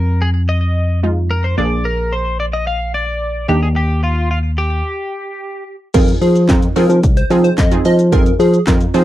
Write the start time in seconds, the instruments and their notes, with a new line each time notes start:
Already playing: tine electric piano F2, synth pluck G#3 F4, clean electric guitar A#4
0.22 clean electric guitar G#4
0.49 clean electric guitar D#5
1.03 synth pluck G#3 D#4 F4
1.31 clean electric guitar A#4
1.44 clean electric guitar C5
1.58 tine electric piano A#1, synth pluck A#3 D4 G#4, clean electric guitar D5
1.85 clean electric guitar A#4
2.13 clean electric guitar C5
2.40 clean electric guitar D5
2.53 clean electric guitar D#5
2.67 clean electric guitar F5
2.94 clean electric guitar D5
3.48 tine electric piano D#2, synth pluck D4 D#4 G4, clean electric guitar G4
3.63 clean electric guitar G#4
3.76 clean electric guitar G4
4.04 clean electric guitar F4
4.31 clean electric guitar F4
4.58 clean electric guitar G4
5.94 tine electric piano F2, synth pluck C4 D#4 F4 G#4, digital synth lead A#4, kick, closed hi-hat, crash, shaker
6.08 closed hi-hat, shaker
6.22 tine electric piano F3, digital synth lead G#4, open hi-hat, shaker
6.36 closed hi-hat, shaker
6.49 tine electric piano F2, synth pluck C4 D#4 F4 A#4, kick, snare, clap, closed hi-hat, shaker
6.62 closed hi-hat, shaker
6.76 tine electric piano F3, synth pluck C4 D#4 F4 G#4, digital synth lead A#4, open hi-hat, shaker
6.90 tine electric piano F3, closed hi-hat, shaker
7.03 tine electric piano C2, kick, closed hi-hat, shaker
7.17 digital synth lead C5, closed hi-hat, shaker
7.30 tine electric piano F3, synth pluck C4 D#4 F4 G#4, open hi-hat, shaker
7.44 digital synth lead C5, closed hi-hat, shaker
7.58 tine electric piano F2, digital synth lead D#5, kick, snare, clap, closed hi-hat, shaker
7.71 synth pluck C4 D#4 F4 G#4, closed hi-hat, shaker
7.85 tine electric piano F3, digital synth lead D#5, open hi-hat, shaker
7.99 closed hi-hat, shaker
8.12 tine electric piano F2, synth pluck C4 D#4 F4 G#4, digital synth lead A#4, kick, closed hi-hat, shaker
8.26 closed hi-hat, shaker
8.40 tine electric piano F3, digital synth lead G#4, open hi-hat, shaker
8.54 closed hi-hat, shaker
8.67 tine electric piano F2, synth pluck C4 D#4 F4 A#4, kick, snare, clap, closed hi-hat, shaker
8.81 closed hi-hat, shaker
8.94 tine electric piano F3, synth pluck C4 D#4 F4 G#4, digital synth lead C5, open hi-hat, shaker